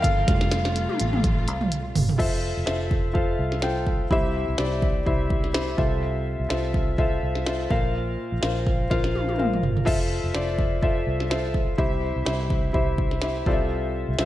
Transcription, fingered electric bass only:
0, 0, Header, 1, 2, 480
1, 0, Start_track
1, 0, Key_signature, -1, "major"
1, 0, Tempo, 479616
1, 280, Time_signature, 4, 2, 24, 8
1, 14262, End_track
2, 0, Start_track
2, 0, Title_t, "Fingered electric bass"
2, 0, Program_c, 0, 33
2, 43, Note_on_c, 0, 31, 100
2, 265, Note_off_c, 0, 31, 0
2, 282, Note_on_c, 0, 29, 107
2, 864, Note_off_c, 0, 29, 0
2, 1010, Note_on_c, 0, 33, 90
2, 1480, Note_off_c, 0, 33, 0
2, 1480, Note_on_c, 0, 36, 92
2, 1925, Note_off_c, 0, 36, 0
2, 1962, Note_on_c, 0, 31, 96
2, 2183, Note_off_c, 0, 31, 0
2, 2200, Note_on_c, 0, 29, 83
2, 2547, Note_off_c, 0, 29, 0
2, 2574, Note_on_c, 0, 29, 69
2, 2665, Note_off_c, 0, 29, 0
2, 2671, Note_on_c, 0, 29, 88
2, 3357, Note_off_c, 0, 29, 0
2, 3393, Note_on_c, 0, 36, 73
2, 4078, Note_off_c, 0, 36, 0
2, 4111, Note_on_c, 0, 36, 93
2, 4461, Note_off_c, 0, 36, 0
2, 4489, Note_on_c, 0, 36, 73
2, 4585, Note_off_c, 0, 36, 0
2, 4591, Note_on_c, 0, 36, 83
2, 5040, Note_off_c, 0, 36, 0
2, 5070, Note_on_c, 0, 36, 77
2, 5757, Note_off_c, 0, 36, 0
2, 5788, Note_on_c, 0, 36, 88
2, 6366, Note_off_c, 0, 36, 0
2, 6402, Note_on_c, 0, 36, 76
2, 6504, Note_off_c, 0, 36, 0
2, 6509, Note_on_c, 0, 36, 88
2, 7196, Note_off_c, 0, 36, 0
2, 7236, Note_on_c, 0, 36, 68
2, 7682, Note_off_c, 0, 36, 0
2, 7715, Note_on_c, 0, 34, 90
2, 8162, Note_off_c, 0, 34, 0
2, 8329, Note_on_c, 0, 34, 74
2, 8428, Note_off_c, 0, 34, 0
2, 8437, Note_on_c, 0, 34, 86
2, 8883, Note_off_c, 0, 34, 0
2, 8920, Note_on_c, 0, 34, 83
2, 9603, Note_off_c, 0, 34, 0
2, 9636, Note_on_c, 0, 31, 81
2, 9860, Note_off_c, 0, 31, 0
2, 9880, Note_on_c, 0, 29, 83
2, 10227, Note_off_c, 0, 29, 0
2, 10245, Note_on_c, 0, 29, 70
2, 10346, Note_off_c, 0, 29, 0
2, 10363, Note_on_c, 0, 29, 84
2, 11045, Note_off_c, 0, 29, 0
2, 11077, Note_on_c, 0, 36, 67
2, 11762, Note_off_c, 0, 36, 0
2, 11792, Note_on_c, 0, 36, 93
2, 12143, Note_off_c, 0, 36, 0
2, 12173, Note_on_c, 0, 36, 77
2, 12267, Note_off_c, 0, 36, 0
2, 12273, Note_on_c, 0, 36, 86
2, 12722, Note_off_c, 0, 36, 0
2, 12753, Note_on_c, 0, 36, 75
2, 13440, Note_off_c, 0, 36, 0
2, 13475, Note_on_c, 0, 36, 93
2, 14052, Note_off_c, 0, 36, 0
2, 14098, Note_on_c, 0, 36, 75
2, 14195, Note_off_c, 0, 36, 0
2, 14202, Note_on_c, 0, 36, 95
2, 14262, Note_off_c, 0, 36, 0
2, 14262, End_track
0, 0, End_of_file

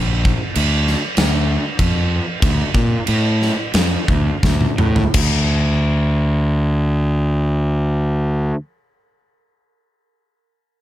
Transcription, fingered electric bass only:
0, 0, Header, 1, 2, 480
1, 0, Start_track
1, 0, Key_signature, -1, "minor"
1, 0, Tempo, 621118
1, 1876, Tempo, 670391
1, 1877, Time_signature, 4, 2, 24, 8
1, 3316, Tempo, 728155
1, 7518, End_track
2, 0, Start_track
2, 0, Title_t, "Fingered electric bass"
2, 0, Program_c, 0, 33
2, 0, Note_on_c, 0, 34, 103
2, 247, Note_off_c, 0, 34, 0
2, 433, Note_on_c, 0, 38, 106
2, 724, Note_off_c, 0, 38, 0
2, 905, Note_on_c, 0, 38, 97
2, 1202, Note_off_c, 0, 38, 0
2, 1383, Note_on_c, 0, 41, 94
2, 1687, Note_off_c, 0, 41, 0
2, 1873, Note_on_c, 0, 38, 97
2, 2018, Note_off_c, 0, 38, 0
2, 2101, Note_on_c, 0, 46, 92
2, 2248, Note_off_c, 0, 46, 0
2, 2343, Note_on_c, 0, 45, 90
2, 2639, Note_off_c, 0, 45, 0
2, 2815, Note_on_c, 0, 41, 96
2, 2969, Note_off_c, 0, 41, 0
2, 3059, Note_on_c, 0, 38, 96
2, 3215, Note_off_c, 0, 38, 0
2, 3309, Note_on_c, 0, 38, 97
2, 3456, Note_off_c, 0, 38, 0
2, 3542, Note_on_c, 0, 45, 87
2, 3691, Note_off_c, 0, 45, 0
2, 3781, Note_on_c, 0, 38, 96
2, 6001, Note_off_c, 0, 38, 0
2, 7518, End_track
0, 0, End_of_file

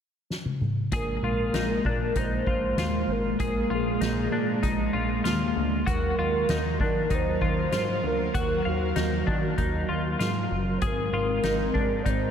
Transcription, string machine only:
0, 0, Header, 1, 2, 480
1, 0, Start_track
1, 0, Tempo, 618557
1, 715, Time_signature, 4, 2, 24, 8
1, 9550, End_track
2, 0, Start_track
2, 0, Title_t, "String machine"
2, 0, Program_c, 0, 50
2, 702, Note_on_c, 0, 56, 77
2, 705, Note_on_c, 0, 58, 63
2, 4517, Note_off_c, 0, 56, 0
2, 4519, Note_off_c, 0, 58, 0
2, 4551, Note_on_c, 0, 77, 70
2, 4553, Note_on_c, 0, 54, 76
2, 4553, Note_on_c, 0, 70, 80
2, 8362, Note_off_c, 0, 77, 0
2, 8363, Note_off_c, 0, 54, 0
2, 8363, Note_off_c, 0, 70, 0
2, 8393, Note_on_c, 0, 79, 89
2, 8394, Note_on_c, 0, 60, 68
2, 8396, Note_on_c, 0, 56, 70
2, 9550, Note_off_c, 0, 56, 0
2, 9550, Note_off_c, 0, 60, 0
2, 9550, Note_off_c, 0, 79, 0
2, 9550, End_track
0, 0, End_of_file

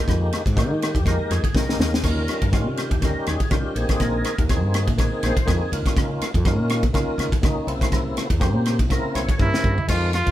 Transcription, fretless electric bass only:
0, 0, Header, 1, 3, 480
1, 0, Start_track
1, 0, Tempo, 490597
1, 73, Time_signature, 4, 2, 24, 8
1, 10089, End_track
2, 0, Start_track
2, 0, Title_t, "Fretless electric bass"
2, 0, Program_c, 0, 35
2, 76, Note_on_c, 0, 41, 90
2, 285, Note_off_c, 0, 41, 0
2, 449, Note_on_c, 0, 44, 85
2, 682, Note_off_c, 0, 44, 0
2, 682, Note_on_c, 0, 51, 78
2, 931, Note_on_c, 0, 41, 73
2, 945, Note_off_c, 0, 51, 0
2, 1139, Note_off_c, 0, 41, 0
2, 1277, Note_on_c, 0, 41, 81
2, 1392, Note_off_c, 0, 41, 0
2, 1515, Note_on_c, 0, 36, 77
2, 1731, Note_off_c, 0, 36, 0
2, 1750, Note_on_c, 0, 39, 73
2, 1968, Note_off_c, 0, 39, 0
2, 1995, Note_on_c, 0, 39, 84
2, 2205, Note_off_c, 0, 39, 0
2, 2372, Note_on_c, 0, 43, 81
2, 2614, Note_off_c, 0, 43, 0
2, 2614, Note_on_c, 0, 48, 86
2, 2849, Note_on_c, 0, 39, 77
2, 2863, Note_off_c, 0, 48, 0
2, 3058, Note_off_c, 0, 39, 0
2, 3202, Note_on_c, 0, 39, 76
2, 3315, Note_off_c, 0, 39, 0
2, 3439, Note_on_c, 0, 36, 89
2, 3553, Note_off_c, 0, 36, 0
2, 3673, Note_on_c, 0, 34, 79
2, 3790, Note_off_c, 0, 34, 0
2, 3919, Note_on_c, 0, 34, 86
2, 4126, Note_off_c, 0, 34, 0
2, 4292, Note_on_c, 0, 39, 78
2, 4533, Note_off_c, 0, 39, 0
2, 4533, Note_on_c, 0, 43, 85
2, 4772, Note_on_c, 0, 34, 81
2, 4787, Note_off_c, 0, 43, 0
2, 4979, Note_off_c, 0, 34, 0
2, 5116, Note_on_c, 0, 34, 91
2, 5231, Note_off_c, 0, 34, 0
2, 5361, Note_on_c, 0, 41, 95
2, 5474, Note_off_c, 0, 41, 0
2, 5596, Note_on_c, 0, 37, 87
2, 5710, Note_off_c, 0, 37, 0
2, 5837, Note_on_c, 0, 37, 97
2, 6044, Note_off_c, 0, 37, 0
2, 6207, Note_on_c, 0, 41, 92
2, 6437, Note_off_c, 0, 41, 0
2, 6437, Note_on_c, 0, 46, 84
2, 6684, Note_on_c, 0, 37, 81
2, 6699, Note_off_c, 0, 46, 0
2, 6894, Note_off_c, 0, 37, 0
2, 7023, Note_on_c, 0, 37, 86
2, 7143, Note_off_c, 0, 37, 0
2, 7271, Note_on_c, 0, 37, 109
2, 7387, Note_off_c, 0, 37, 0
2, 7503, Note_on_c, 0, 36, 79
2, 7623, Note_off_c, 0, 36, 0
2, 7751, Note_on_c, 0, 36, 89
2, 7961, Note_off_c, 0, 36, 0
2, 8119, Note_on_c, 0, 40, 84
2, 8353, Note_off_c, 0, 40, 0
2, 8353, Note_on_c, 0, 46, 90
2, 8600, Note_on_c, 0, 36, 86
2, 8615, Note_off_c, 0, 46, 0
2, 8812, Note_off_c, 0, 36, 0
2, 8953, Note_on_c, 0, 36, 84
2, 9069, Note_off_c, 0, 36, 0
2, 9191, Note_on_c, 0, 43, 100
2, 9308, Note_off_c, 0, 43, 0
2, 9435, Note_on_c, 0, 43, 83
2, 9550, Note_off_c, 0, 43, 0
2, 9675, Note_on_c, 0, 41, 89
2, 10001, Note_off_c, 0, 41, 0
2, 10049, Note_on_c, 0, 41, 84
2, 10089, Note_off_c, 0, 41, 0
2, 10089, End_track
3, 0, Start_track
3, 0, Title_t, "Muted fretless electric bass strokes"
3, 9084, Note_on_c, 9, 29, 38
3, 9182, Note_off_c, 9, 29, 0
3, 9575, Note_on_c, 9, 29, 41
3, 9673, Note_off_c, 9, 29, 0
3, 10089, End_track
0, 0, End_of_file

